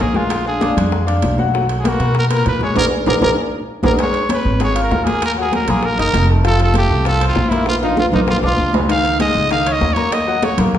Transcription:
Already playing: grand piano A#3 A#4 C#5
0.00 upright bass A#1, trumpet G#4, high bongo, low bongo, high conga, high timbale, low timbale
0.14 grand piano G#3 G#4 G#5, trumpet F4, high bongo, high conga
0.30 high bongo, high conga, high timbale
0.46 grand piano D4 D5 F5, trumpet G#4, high bongo, high conga
0.61 grand piano D4 D5 F5, high bongo, high conga, high timbale
0.77 upright bass F2, grand piano G#3 G#4 G#5, high conga, low conga, high timbale
0.92 high bongo, high conga
1.07 grand piano D4 D5 F5, high bongo, high conga, high timbale
1.22 upright bass B1, high bongo, low bongo, high conga, high timbale
1.38 grand piano F#3 F#4 F#5, high bongo, high conga
1.54 grand piano F#3 F#4 F#5, high bongo, high conga
1.69 high bongo, high conga, high timbale
1.79 trumpet G#4
1.84 grand piano A#3 A#4 B4, high bongo, high conga, high timbale
1.88 trumpet F#4
1.99 upright bass B2, grand piano B3 A#4 B4, high conga, high timbale
2.15 trumpet A#4, high bongo, high conga
2.30 grand piano A#2 A#4 B4, trumpet A#4, high bongo, high conga, high timbale
2.46 upright bass A#2, trumpet B4, high bongo, low bongo, high conga, high timbale
2.61 grand piano G#3 G#4 G#5, trumpet C#5, high bongo, high conga
2.75 upright bass A#1, grand piano G#4 A#4 D5, trumpet A#4, low bongo, high conga, high timbale
3.06 upright bass A#1, grand piano G#4 A#4 D5, trumpet A#4, low bongo, high conga, high timbale
3.22 upright bass A#1, grand piano G#4 A#4 D5, trumpet A#4, low bongo, high conga, high timbale
3.83 upright bass A#1, grand piano G#4 A#4 D5, trumpet A#4, low bongo, high conga, high timbale
3.99 grand piano G#3 G#4 G#5, trumpet C#5, high bongo, high conga, high timbale
4.14 high conga, high timbale
4.29 grand piano C#4 C#5 C#6, high bongo, high conga, high timbale
4.33 trumpet B4
4.45 upright bass G#1
4.60 grand piano G#3 G#4 G#5, trumpet C#5, high bongo, high conga, high timbale
4.75 grand piano F4 F5 F6, high conga, high timbale
4.83 trumpet A#4
4.91 upright bass D#2, high bongo, low bongo, high conga, low timbale
5.04 grand piano A#3 A#4 A#5, trumpet G#4, high conga, high timbale
5.22 trumpet A#4, high bongo, high conga, high timbale
5.37 grand piano F#3 F#4 F#5, high conga
5.41 trumpet G#4
5.52 trumpet A#4, high bongo, high conga, high timbale
5.68 upright bass A#1, grand piano A#3 A#4 A#5, trumpet G#4, high bongo, high conga, low conga, high timbale
5.83 trumpet A#4, high bongo, high conga
5.99 upright bass F#1, grand piano D#4 D#5 D#6, trumpet A#4, high bongo, high conga, high timbale
6.13 upright bass F1, high bongo, low bongo, high conga, high timbale
6.29 grand piano A3 A4 A5, high bongo
6.44 grand piano F3 F4 F5, trumpet A4, high bongo, high conga, high timbale
6.59 high conga, high timbale
6.63 trumpet A4
6.74 grand piano A3 A4 A5, trumpet G4, high bongo, high conga, high timbale
6.90 upright bass C2
7.05 grand piano F3 F4 F5, trumpet A4, high bongo, high conga, high timbale
7.20 grand piano C4 C5 C6, high conga, high timbale
7.28 trumpet F4
7.36 upright bass A#1, high bongo, low bongo, high conga
7.49 grand piano A#3 A#4 A#5, trumpet E4, high conga, high timbale
7.66 trumpet F4, high bongo, high conga, high timbale
7.82 grand piano F3 F4 F5, trumpet D#4, high conga, high timbale
7.97 trumpet F4, high bongo, high conga, high timbale
8.12 upright bass A#1, grand piano A#3 A#4 A#5, trumpet D#4, high bongo, high conga, low conga, high timbale
8.27 trumpet F4, high bongo, high conga, low conga, low timbale
8.42 upright bass B1, grand piano D4 D5 D6, trumpet F4, high bongo, high conga, low timbale
8.57 upright bass C#2, high conga
8.73 grand piano G#3 G#4 G#5, low bongo, high conga, low timbale
8.88 grand piano D#3 D#4 D#5, trumpet F5, high bongo, high conga, high timbale
9.04 high conga, high timbale
9.20 grand piano G#3 G#4 G#5, trumpet D#5, high bongo, high conga, high timbale
9.35 upright bass C#2
9.50 grand piano D#3 D#4 D#5, trumpet F5, high bongo, high conga, high timbale
9.66 grand piano C#4 C#5 C#6, high conga, high timbale
9.72 trumpet D#5
9.81 upright bass D#2, high bongo, low bongo, high conga, low timbale
9.93 grand piano A#3 A#4 A#5, trumpet C#5, high conga, high timbale
10.11 trumpet D#5, high bongo, high conga, high timbale
10.27 grand piano F#3 F#4 F#5, high conga
10.42 trumpet C#5, high bongo, high conga, high timbale
10.58 upright bass A#1, grand piano A#3 A#4 A#5, high bongo, high conga, low conga, high timbale
10.74 high bongo, high conga, low conga

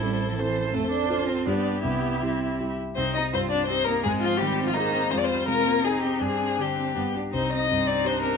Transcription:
Already playing: grand piano A1, viola E4, violin A4 C5
0.02 cello G3, grand piano C4 E4 A4
0.29 cello F3
0.38 cello E3, grand piano C4 E4 A4, viola C5
0.73 grand piano F2, cello A3, viola A4, violin C5
0.91 cello D4
1.09 grand piano C4 F4 A4, viola F4
1.27 cello C4
1.46 grand piano G2 G3 D4 G4, cello B3, viola D4, violin G4 D5
1.83 grand piano C2, cello B3, viola E4, violin E5
2.22 grand piano G3 E4 G4, cello C4
2.60 grand piano G3 E4 G4
2.95 grand piano C2, viola C4, violin C4 C5, cello D#4
3.14 grand piano C4, violin D#4 D#5, viola D#4
3.33 grand piano G2, viola C4, violin C4 C5, cello F4
3.50 grand piano C4, viola D4, violin D4 D5
3.66 viola C4, violin C4 C5, cello D#4
3.70 grand piano G4
3.84 viola A#3, grand piano C4, violin A#4
3.89 violin A#3
4.03 grand piano G#2, viola G#3, violin G#3 G#4, cello C4
4.21 viola F3, grand piano C4, violin F4
4.25 violin F4
4.37 violin G3 G4
4.41 grand piano D#3, viola G3
4.59 grand piano C4
4.66 viola F3, violin F4
4.74 viola D#3, cello A#3, violin D#4, grand piano G#4
4.94 grand piano C4
5.10 grand piano F2, cello G#3, viola G#3, violin F4 C5
5.18 violin D5
5.24 violin C5
5.29 viola G3, grand piano C4
5.46 grand piano C3, viola G#3, cello C4, violin F4 A#4
5.64 viola A#3, grand piano C4
5.82 viola C4, cello D#4, violin D#4 G#4, grand piano G#4
6.01 grand piano C4, violin G4
6.19 grand piano G2, viola C4, violin D4 G#4, cello D4
6.39 grand piano C4
6.57 grand piano D3, cello D4, violin G4
6.76 cello C4, grand piano C4
6.95 grand piano G2, cello B3, viola B3, violin D4
7.15 cello D4, grand piano D4 G4
7.31 grand piano C2, viola C4, violin D#4 C5, cello D#4
7.53 grand piano C4, violin D#5
7.70 grand piano G2, cello C4, viola C4, violin D#4
7.87 grand piano C4, violin D5
8.05 viola D4, grand piano G4, violin C5
8.22 grand piano C4, violin A#4

